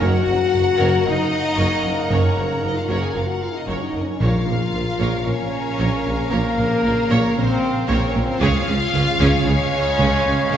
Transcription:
0.00 F#1 F#2 C#3 A#3 F#4 A#4 C#5 F#5 A#5
0.27 F#1 F#2 A#4
0.52 F#1 F#2 F#4 A#4
0.78 F#1 F#2 A#4 C#5
1.05 F#1 F#2 D#4 A#4 D#5
1.56 F#1 F#2 A#4 C#5
1.83 F#1 F#2 A#4
2.09 F#1 F#2 C#4 A#4 C#5
2.36 F#1 F#2 A#4
2.60 F#1 F#2 D#4 F#4 A#4
2.65 D#5
2.74 F4 F5
2.87 F#1 F#2 F#4 A#4 C#5 F#5
3.00 G#4 G#5
3.13 F#1 F#2 F4 A#4
3.18 F5
3.26 F#4 F#5
3.41 F4 F5
3.53 D#4
3.57 D#5
3.66 F#1 F#2 C#4 A#4 C#5
3.82 D#4 D#5
3.94 F#1 F#2 A#4
4.01 C#4 C#5
4.19 A#1 A#2 C#3 A#3 F4 A#4 C#5 F5 A#5
4.23 F5
4.47 A#1 A#2 A#4
4.73 A#1 A#2 F4 A#4
4.99 A#1 A#2 A#4 C#5
5.25 A#1 A#2 C#4 A#4 C#5
5.78 A#1 A#2 A#4 C#5
6.04 A#1 A#2 A#4
6.31 A#1 A#2 A#3 A#4 C#5
6.58 A#1 A#2 A#4
6.83 A#1 A#2 F4 A#4
7.10 A#1 A#2 A#4 C#5
7.36 A#1 A#2 C4 A#4 C5
7.88 A#1 A#2 C4 A#4 C5 C#5
8.07 C#4 C#5
8.14 A#1 A#2 A#4
8.23 C4 C5
8.39 C#2 C#3 G#3 F4 G#4 C#5 F5
8.67 C#2 C#3 G#4
8.93 C#2 C#3 F4 G#4
9.19 C#2 C#3 G#4 C#5
9.45 C#2 C#3 C#4 G#4 C#5
9.99 C#2 C#3 G#4 C#5
10.25 C#2 C#3 G#4
10.50 C#2 C#3 G#3 G#4 C#5

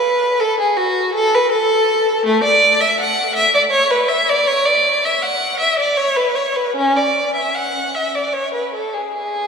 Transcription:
Already playing: B4
0.40 A4
0.60 G#4
0.77 F#4
1.15 A4
1.34 B4
1.52 A4
2.26 A3
2.43 D5
2.81 E5
3.00 F#5
3.35 E5
3.55 D5
3.71 C#5
3.90 B4
4.08 E5
4.29 D5
4.47 C#5
4.65 D5
5.05 E5
5.22 F#5
5.60 E5
5.79 D5
5.97 C#5
6.16 B4
6.35 C#5
6.56 B4
6.76 C#4
6.97 D5
7.35 E5
7.55 F#5
7.94 E5
8.15 D5
8.33 C#5
8.54 B4
8.74 A4
8.93 G#4
9.14 G#4

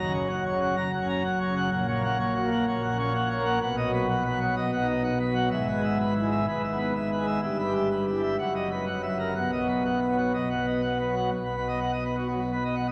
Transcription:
Already playing: F#1 F#2 A#5
0.06 C#3
0.14 C#5
0.30 F#5
0.45 C#5
0.53 C#3
0.61 F#5
0.76 F#1 F#2 A#5
0.93 F#5
1.01 C#4
1.09 A#5
1.24 F#5
1.40 C#5
1.48 C#3
1.56 F#5
1.72 A#1 A#2 F#5
1.88 C#5
1.96 A#3
2.04 F#5
2.20 C#5
2.35 F#4
2.44 A#3
2.52 F#5
2.68 A#1 A#2 C#5
2.83 F#5
2.91 C#4
2.99 C#5
3.14 F#5
3.30 C#5
3.39 A#3
3.46 F#5
3.61 B1 B2 F#5
3.77 D#5
3.85 F#3
3.93 B4
4.09 F#5
4.24 B4
4.32 F#3
4.41 F#5
4.56 B1 B2 D#5
4.73 F#5
4.81 D#4
4.88 D#5
5.04 F#5
5.20 B4
5.27 F#3
5.35 F#5
5.51 G#1 G#2 E5
5.68 B4
5.76 G#3
5.84 E5
6.00 B4
6.15 E4
6.23 G#3
6.32 E5
6.48 G#1 G#2 B4
6.64 E5
6.72 B3
6.80 B4
6.96 E5
7.12 B4
7.19 G#3
7.27 E5
7.43 G1 G2 E5
7.59 B4
7.67 G3
7.75 E5
7.91 B4
8.07 E4
8.15 G3
8.23 E5
8.39 F#1 F#2 F#5
8.55 D#5
8.71 B4
8.87 F#1 F#2 F#5
9.03 E5
9.19 A#4
9.36 B1 B2 F#5
9.52 D#5
9.61 F#3
9.68 B4
9.85 F#5
10.02 B4
10.10 F#3
10.18 F#5
10.34 B1 B2 D#5
10.50 F#5
10.59 B3
10.66 D#5
10.83 F#5
10.99 B4
11.08 F#3
11.16 F#5
11.32 B1 B2
11.44 B3
11.56 B4
11.68 D#5
11.81 F#5
11.93 D#5
12.04 B4
12.16 F#4
12.28 F#3
12.40 B3
12.53 B4
12.64 D#5
12.76 F#5
12.88 D#5

